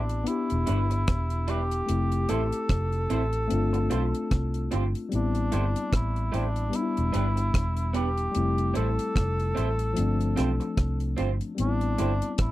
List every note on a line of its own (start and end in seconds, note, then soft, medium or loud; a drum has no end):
0.00 0.24 A1 medium
0.00 0.23 B3 medium
0.00 0.23 C4 medium
0.00 0.30 D4 medium
0.00 0.25 E4 medium
0.00 0.26 G4 medium
0.09 closed hi-hat medium
0.24 1.84 B3 medium
0.24 1.85 D4 medium
0.24 1.86 E4 medium
0.24 closed hi-hat medium
0.28 1.51 E4 loud
0.28 1.87 G4 medium
0.50 0.67 E1 medium
0.50 closed hi-hat soft
0.66 1.04 G1 medium
0.66 0.78 G3 medium
0.66 0.78 D4 medium
0.66 0.79 E4 medium
0.66 0.79 B4 medium
0.66 closed hi-hat medium
0.90 muted clean electric guitar stroke soft
0.90 closed hi-hat soft
1.08 1.81 E1 medium
1.08 kick loud
1.08 cross-stick loud
1.08 closed hi-hat medium
1.30 closed hi-hat medium
1.48 1.59 G3 medium
1.48 1.59 D4 medium
1.48 1.60 E4 medium
1.48 2.31 G4 loud
1.48 1.60 B4 medium
1.48 closed hi-hat medium
1.71 closed hi-hat medium
1.86 2.25 F1 loud
1.86 3.46 A3 medium
1.86 3.47 C4 medium
1.86 3.48 E4 medium
1.86 closed hi-hat medium
1.92 3.49 G4 medium
2.12 closed hi-hat soft
2.29 2.51 A1 medium
2.29 2.40 C4 medium
2.29 2.40 E4 medium
2.29 4.72 A4 loud
2.29 2.41 A4 medium
2.29 2.41 C5 medium
2.29 closed hi-hat medium
2.52 closed hi-hat medium
2.69 3.06 F1 medium
2.69 kick loud
2.69 cross-stick medium
2.69 closed hi-hat medium
2.92 closed hi-hat soft
3.10 3.47 A1 medium
3.10 3.21 C4 medium
3.10 3.21 E4 medium
3.10 3.21 A4 medium
3.10 3.22 C5 medium
3.10 closed hi-hat medium
3.33 closed hi-hat medium
3.48 5.07 A3 medium
3.48 5.08 C4 medium
3.48 closed hi-hat medium
3.52 3.87 G1 loud
3.52 5.09 D4 medium
3.52 5.10 F4 medium
3.73 muted clean electric guitar stroke soft
3.73 closed hi-hat soft
3.90 4.12 B1 medium
3.90 4.01 C4 medium
3.90 4.02 F4 medium
3.90 4.02 G4 medium
3.90 4.02 C5 medium
3.90 closed hi-hat medium
4.15 closed hi-hat soft
4.31 4.68 C2 medium
4.31 kick loud
4.31 cross-stick loud
4.31 closed hi-hat medium
4.54 closed hi-hat medium
4.71 4.93 G1 medium
4.71 4.83 C4 medium
4.71 4.83 F4 medium
4.71 4.83 G4 medium
4.71 4.83 C5 medium
4.71 closed hi-hat medium
4.95 closed hi-hat medium
5.09 6.68 G3 medium
5.09 6.70 B3 medium
5.09 6.71 C4 medium
5.09 closed hi-hat medium
5.13 5.49 A1 medium
5.13 5.91 D4 medium
5.13 6.72 E4 medium
5.35 closed hi-hat soft
5.52 5.74 G1 medium
5.52 5.63 A3 medium
5.52 5.63 E4 medium
5.52 5.64 G4 medium
5.52 5.64 C5 medium
5.52 closed hi-hat medium
5.76 closed hi-hat soft
5.93 6.29 A1 medium
5.93 6.32 E4 medium
5.93 kick medium
5.93 cross-stick medium
5.93 closed hi-hat medium
6.16 closed hi-hat soft
6.32 6.70 A1 medium
6.32 6.44 A3 medium
6.32 6.44 E4 medium
6.32 6.44 G4 medium
6.32 6.44 C5 medium
6.32 closed hi-hat medium
6.36 6.77 D4 medium
6.56 closed hi-hat medium
6.70 8.30 G3 medium
6.70 8.31 B3 medium
6.70 8.32 D4 medium
6.70 closed hi-hat medium
6.75 6.82 D#4 medium
6.75 7.96 E4 loud
6.82 8.36 E4 medium
6.97 7.13 E1 medium
6.97 closed hi-hat soft
7.12 7.51 G1 medium
7.12 7.24 B3 medium
7.12 7.25 D4 medium
7.12 7.25 G4 medium
7.12 7.25 B4 medium
7.12 closed hi-hat medium
7.36 muted clean electric guitar stroke soft
7.36 closed hi-hat soft
7.54 8.27 E1 medium
7.54 kick loud
7.54 cross-stick loud
7.54 closed hi-hat medium
7.77 closed hi-hat medium
7.93 8.05 B3 medium
7.93 8.06 D4 medium
7.93 8.06 G4 medium
7.93 8.72 G4 loud
7.93 8.06 B4 medium
7.93 closed hi-hat medium
8.18 closed hi-hat medium
8.32 9.92 G3 medium
8.32 9.92 A3 medium
8.32 9.94 C4 medium
8.32 closed hi-hat medium
8.36 8.72 F1 medium
8.36 9.95 E4 medium
8.58 closed hi-hat soft
8.74 8.97 A1 medium
8.74 8.86 C4 medium
8.74 8.86 E4 medium
8.74 8.87 A4 medium
8.74 11.15 A4 loud
8.74 8.87 C5 medium
8.74 closed hi-hat medium
8.99 closed hi-hat medium
9.16 9.52 F1 medium
9.16 kick medium
9.16 cross-stick loud
9.16 closed hi-hat medium
9.40 closed hi-hat soft
9.55 9.93 A1 medium
9.55 9.67 C4 medium
9.55 9.67 E4 medium
9.55 9.68 A4 medium
9.55 9.68 C5 medium
9.55 closed hi-hat medium
9.79 closed hi-hat medium
9.94 11.54 F3 medium
9.94 11.55 A3 medium
9.94 11.56 C4 medium
9.94 closed hi-hat medium
9.98 10.34 G1 medium
9.98 11.57 D4 medium
10.21 closed hi-hat soft
10.36 10.59 B1 medium
10.36 10.48 C4 medium
10.36 10.48 F4 medium
10.36 10.48 G4 medium
10.36 10.49 C5 medium
10.36 cross-stick medium
10.36 closed hi-hat medium
10.60 muted clean electric guitar stroke soft
10.60 closed hi-hat medium
10.77 11.14 C2 medium
10.77 kick loud
10.77 cross-stick loud
10.77 closed hi-hat medium
11.00 closed hi-hat medium
11.17 11.39 G1 medium
11.17 11.28 C4 medium
11.17 11.29 F4 medium
11.17 11.29 G4 medium
11.17 11.30 C5 medium
11.17 closed hi-hat medium
11.41 closed hi-hat medium
11.55 12.52 G3 medium
11.55 12.52 B3 medium
11.55 12.52 C4 medium
11.55 closed hi-hat medium
11.59 11.95 A1 loud
11.59 12.36 D4 medium
11.59 11.67 D#4 medium
11.67 12.52 E4 medium
11.81 closed hi-hat soft
11.98 12.20 G1 medium
11.98 12.10 A3 medium
11.98 12.10 E4 medium
11.98 12.10 G4 medium
11.98 12.10 C5 medium
11.98 closed hi-hat medium
12.22 closed hi-hat medium
12.38 12.52 A1 medium
12.38 12.52 E4 medium
12.38 kick loud
12.38 cross-stick loud
12.38 closed hi-hat medium